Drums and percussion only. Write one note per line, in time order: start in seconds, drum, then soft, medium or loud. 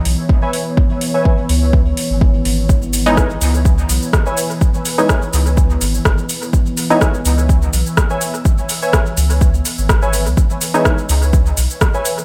0.05 open hi-hat medium
0.29 kick loud
0.53 open hi-hat medium
0.77 kick loud
1.01 open hi-hat medium
1.25 kick loud
1.49 open hi-hat medium
1.73 kick loud
1.97 open hi-hat medium
2.21 kick loud
2.45 open hi-hat medium
2.69 kick loud
2.69 shaker soft
2.82 shaker soft
2.93 open hi-hat medium
2.93 shaker medium
3.06 shaker soft
3.17 kick loud
3.17 cross-stick medium
3.17 shaker soft
3.30 shaker soft
3.41 open hi-hat medium
3.41 shaker medium
3.54 shaker soft
3.65 kick loud
3.65 shaker soft
3.78 shaker soft
3.89 open hi-hat medium
3.89 shaker medium
4.02 shaker soft
4.13 kick loud
4.13 cross-stick medium
4.13 shaker soft
4.26 shaker soft
4.37 open hi-hat medium
4.37 shaker medium
4.50 shaker soft
4.61 kick loud
4.61 shaker soft
4.74 shaker soft
4.85 open hi-hat medium
4.85 shaker medium
4.98 shaker soft
5.09 kick medium
5.09 cross-stick medium
5.09 shaker soft
5.22 shaker soft
5.33 open hi-hat medium
5.33 shaker medium
5.46 shaker soft
5.57 kick loud
5.57 shaker soft
5.70 shaker soft
5.81 open hi-hat medium
5.81 shaker medium
5.94 shaker soft
6.05 kick loud
6.05 cross-stick medium
6.05 shaker soft
6.18 shaker soft
6.29 open hi-hat medium
6.29 shaker medium
6.42 shaker soft
6.53 kick loud
6.53 shaker soft
6.66 shaker soft
6.77 open hi-hat medium
6.77 shaker medium
6.90 shaker soft
7.01 kick medium
7.01 cross-stick medium
7.01 shaker soft
7.14 shaker soft
7.25 open hi-hat medium
7.25 shaker medium
7.38 shaker soft
7.49 kick loud
7.49 shaker soft
7.62 shaker soft
7.73 open hi-hat medium
7.73 shaker medium
7.86 shaker soft
7.97 kick loud
7.97 cross-stick medium
7.97 shaker soft
8.10 shaker soft
8.21 open hi-hat medium
8.21 shaker medium
8.34 shaker soft
8.45 kick loud
8.45 shaker soft
8.58 shaker soft
8.69 open hi-hat medium
8.69 shaker medium
8.82 shaker soft
8.93 kick loud
8.93 cross-stick medium
8.93 shaker soft
9.06 shaker soft
9.17 open hi-hat medium
9.17 shaker medium
9.30 open hi-hat soft
9.30 shaker soft
9.41 kick loud
9.41 shaker soft
9.54 shaker soft
9.65 open hi-hat medium
9.65 shaker medium
9.78 shaker soft
9.89 kick loud
9.89 cross-stick medium
9.89 shaker soft
10.02 shaker soft
10.13 open hi-hat medium
10.13 shaker medium
10.26 shaker soft
10.37 kick loud
10.37 shaker soft
10.50 shaker soft
10.61 open hi-hat medium
10.61 shaker medium
10.74 shaker soft
10.85 kick loud
10.85 cross-stick medium
10.85 shaker soft
10.98 shaker soft
11.09 open hi-hat medium
11.09 shaker medium
11.22 shaker soft
11.33 kick loud
11.33 shaker soft
11.46 shaker soft
11.57 open hi-hat medium
11.57 shaker medium
11.70 shaker soft
11.81 kick loud
11.81 cross-stick medium
11.81 shaker soft
11.94 shaker soft
12.05 open hi-hat medium
12.05 shaker medium
12.18 shaker soft